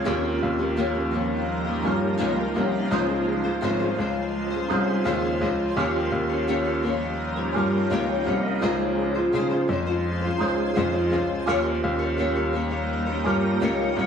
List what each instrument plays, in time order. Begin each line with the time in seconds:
Already playing: ambient pad F3, tonewheel organ G#4 C#5
0.04 grand piano D#2, nylon-string guitar D#3 A#3 C#4 G4, ambient pad G3 A#3 D#4, tonewheel organ C#4 F4 G4 A#4
0.43 grand piano D#2
0.59 nylon-string guitar A#3 C#4 G4
0.77 nylon-string guitar D#3 A#3 C#4 G4
0.94 nylon-string guitar A#3 C#4 G4
1.11 nylon-string guitar D#3 A#3 C#4 G4
1.65 nylon-string guitar A#3 C#4 G4
1.82 grand piano G2, nylon-string guitar D#3 A#3 C#4 G4, tonewheel organ C#4 F4 F#4
1.86 tonewheel organ A#4
1.92 tonewheel organ G4
2.17 grand piano C#2, nylon-string guitar D#3 A#3 C#4 G4
2.36 nylon-string guitar A#3 C#4 G4
2.54 grand piano C2, nylon-string guitar D#3 A#3 C#4 G4
2.90 grand piano C#2, nylon-string guitar C#3 F3 G#3 C#4 F4 C5, ambient pad G#3 F4 C5, tonewheel organ D#4 F4 G#4 C5
3.44 nylon-string guitar G#3 C#4 F4 C5
3.61 grand piano G#1, nylon-string guitar C#3 F3 G#3 C#4 F4 C5
3.79 nylon-string guitar G#3 C#4 F4 C5
3.97 grand piano C#2, nylon-string guitar G#3 C#4 F4 C5
4.50 nylon-string guitar C#4 F4 C5
4.55 nylon-string guitar G#3
4.68 grand piano C2, nylon-string guitar G#3 C#4 F4 C5, tonewheel organ D#4 F4 G#4 C5
5.04 grand piano D#2, nylon-string guitar C#3 F3 G#3 C#4 F4 C5
5.40 grand piano C#2, nylon-string guitar G#3 C#4 F4
5.44 nylon-string guitar C5
5.76 grand piano D#2, nylon-string guitar D#3 A#3 C#4 G4 C#5, ambient pad G3 A#3 D#4, tonewheel organ C#4 F4 G4 A#4
6.12 grand piano D#2
6.29 nylon-string guitar C#4 G4 C#5
6.47 nylon-string guitar D#3 A#3 C#4 G4 C#5
6.65 nylon-string guitar G4 C#5
6.69 nylon-string guitar C#4
6.83 nylon-string guitar A#3 C#4 G4 C#5
7.01 nylon-string guitar C#4 G4 C#5
7.36 nylon-string guitar C#4 G4 C#5
7.53 grand piano G2, nylon-string guitar A#3 C#4 G4, tonewheel organ C#4 F4 G4 A#4
7.58 nylon-string guitar C#5
7.90 grand piano C#2, nylon-string guitar D#3 A#3 C#4 G4 C#5
8.08 tonewheel organ C#5 G5
8.24 grand piano C2, nylon-string guitar A#3 C#4 G4 C#5, tonewheel organ C5 F5
8.43 tonewheel organ A#4 D#5
8.60 grand piano C#2, nylon-string guitar C#3 F3 G#3 C#4 C5, ambient pad G#3 F4 C5, tonewheel organ D#4 F4 G#4 C5
8.64 nylon-string guitar F4
9.15 nylon-string guitar C#4 F4 C5
9.19 nylon-string guitar G#3
9.32 nylon-string guitar C#3 F3 G#3 C#4 F4 C5, grand piano C#3
9.50 nylon-string guitar G#3 C#4 F4 C5
9.67 grand piano F2, nylon-string guitar G#3 C#4 F4
9.72 nylon-string guitar C5
9.86 nylon-string guitar G#3 C#4 F4 C5
10.21 nylon-string guitar C#4 F4 C5
10.26 nylon-string guitar G#3
10.38 grand piano C#2, nylon-string guitar G#3 C#4 F4, tonewheel organ D#4 F4 G#4 C5
10.43 nylon-string guitar C5
10.75 grand piano F2, nylon-string guitar C#3 F3 G#3 C#4 F4 C5
10.92 nylon-string guitar C#4 F4 C5
10.96 nylon-string guitar G#3
11.10 grand piano C#2, nylon-string guitar G#3 C#4 F4 C5
11.45 grand piano D#2, nylon-string guitar D#3 A#3 C#4 G4 C#5, ambient pad G3 A#3 D#4, tonewheel organ C#4 F4 G4 A#4
11.84 grand piano D#2
11.99 nylon-string guitar G4 C#5
12.03 nylon-string guitar C#4
12.17 nylon-string guitar D#3 A#3 C#4 G4 C#5
12.35 nylon-string guitar C#4 G4 C#5
12.53 nylon-string guitar A#3 C#4 G4 C#5
12.71 nylon-string guitar C#4 G4 C#5
13.06 nylon-string guitar C#4 G4 C#5
13.24 grand piano G2, nylon-string guitar A#3 C#4 G4, tonewheel organ C#4 F4 G4 A#4
13.28 nylon-string guitar C#5
13.60 grand piano C#2, nylon-string guitar D#3 A#3 C#4 G4 C#5
13.95 grand piano C2, nylon-string guitar A#3 C#4 G4 C#5